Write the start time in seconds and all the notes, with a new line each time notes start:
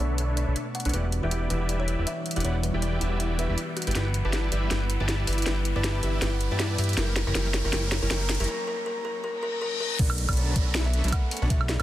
Already playing: B2 A3 B3 D4 D5, riser
0.00 B1 B3 D4 A4 B4 C#5 E5
0.18 closed hi-hat
0.37 D5, closed hi-hat
0.48 B1 D4 A4 B4 C#5 E5
0.56 closed hi-hat
0.75 F#5, closed hi-hat
0.80 closed hi-hat
0.85 B1 D4 A4 B4 C#5 F#5, closed hi-hat
0.89 E3 B3, closed hi-hat
0.94 E1 E3 G3 E4 F#4 G4 B4 D5 F#5, closed hi-hat
1.12 closed hi-hat
1.22 E1 E3 B3 E4 F#4 G4 B4 D5 E5 G5
1.31 closed hi-hat
1.48 E1 E3 B3 E4 G4 B4 D5 E5 F#5, closed hi-hat
1.69 closed hi-hat
1.80 C#5
1.88 closed hi-hat
1.99 E1 E4 G4 B4 D5 E5
2.07 E5, closed hi-hat
2.26 closed hi-hat
2.31 closed hi-hat
2.36 E1 E4 G4 B4 D5 F#5, closed hi-hat
2.40 E3 B3, closed hi-hat
2.45 E1 E4 F#4 G4 B4 C#5 D5 F#5, closed hi-hat
2.63 B4, closed hi-hat
2.73 E1 E3 B3 E4 F#4 G4 B4 D5 E5 G5
2.82 D5, closed hi-hat
3.00 E1 E3 B3 E4 G4 B4 D5 E5 F#5, closed hi-hat
3.20 closed hi-hat
3.38 E3 B3 F#4 G4 B4 E5, closed hi-hat
3.49 E1 E4 G4 B4 D5 E5
3.58 closed hi-hat
3.77 G3 E4 F#4 B4, closed hi-hat
3.82 closed hi-hat
3.87 G1 E4 G4 B4 D5 G5, closed hi-hat
3.91 closed hi-hat
3.95 G1 E4 G4 B4 D5 G5, snare, closed hi-hat
4.06 B3
4.14 closed hi-hat
4.25 G1 D4 E4 G4 B4 D5 A5
4.33 E4, snare, closed hi-hat
4.52 G1 E4 G4 B4 D5 E5, closed hi-hat
4.63 E4
4.71 G1 E4 G4 B4 D5 G5, snare, closed hi-hat
4.81 B3
4.90 closed hi-hat
5.00 G1 D4 E4 G4 B4 D5 A5
5.09 E4, snare, closed hi-hat
5.27 G1 E4 G4 B4 D5 E5, open hi-hat
5.33 closed hi-hat
5.38 E4, closed hi-hat
5.42 closed hi-hat
5.46 G1 E4 G4 B4 D5 G5, snare, closed hi-hat
5.57 B3
5.65 closed hi-hat
5.76 G1 D4 E4 G4 B4 D5 A5
5.84 E4, snare, closed hi-hat
6.03 G1 E4 G4 B4 D5 E5, closed hi-hat
6.14 E4
6.22 G1 E4 G4 B4 D5 G5, snare, closed hi-hat
6.32 B3
6.41 closed hi-hat
6.51 G2 D4 E4 G4 B4 D5 A5
6.60 E4, snare, closed hi-hat
6.78 G2 E4 G4 B4 D5 E5, open hi-hat
6.84 closed hi-hat
6.89 E4, closed hi-hat
6.93 closed hi-hat
6.97 F#1 F#3 E4 G4 A#4 C#5 G5, snare, closed hi-hat
7.08 A#3
7.16 snare, closed hi-hat
7.27 F#1 C#4 E4 G4 A#4 C#5 A#5
7.35 F#1 E4 G4 A#4 C#5 G5, snare, closed hi-hat
7.46 A#3
7.54 snare, closed hi-hat
7.64 F#1 C#4 E4 G4 A#4 C#5 A#5
7.73 F#1 E4 G4 A#4 C#5 G5, snare, closed hi-hat
7.83 A#3
7.92 snare, closed hi-hat
8.02 F#1 C#4 E4 G4 A#4 C#5 A#5
8.11 F#1 E4 G4 A#4 C#5 G5, snare, closed hi-hat
8.21 A#3
8.29 snare, open hi-hat
8.35 closed hi-hat
8.40 F#1 C#4 E4 G4 A#4 C#5 A#5, closed hi-hat
8.44 closed hi-hat
8.48 A#4
8.67 A#4
8.86 A#4
9.05 A#4
9.24 A#4, reverse cymbal
9.43 A#4
9.62 A#4
9.80 A#4
9.99 B1 D4 A4 B4 C#5 D5 F#5, kick, closed hi-hat, crash, downlifter
10.10 A3, high woodblock
10.18 closed hi-hat
10.29 B1 B3 D4 A4 B4 C#5 D5 A5, kick, closed hi-hat, high woodblock
10.33 closed hi-hat
10.37 C#4, closed hi-hat
10.56 B1 D4 A4 B4 C#5 D5 E5, kick, closed hi-hat
10.66 C#4
10.75 snare, closed hi-hat
10.85 B3 E5
10.94 closed hi-hat
11.04 B1 A3 D4 A4 B4 C#5 E5, closed hi-hat
11.08 closed hi-hat
11.12 B3 F#5, kick, closed hi-hat, high woodblock
11.31 C#4, open hi-hat
11.37 closed hi-hat
11.42 B1 D4 A4 B4 C#5 F#5
11.50 B1 D4 A4 B4 C#5 E5 F#5, kick, closed hi-hat
11.61 A3, high woodblock
11.69 D5, snare, closed hi-hat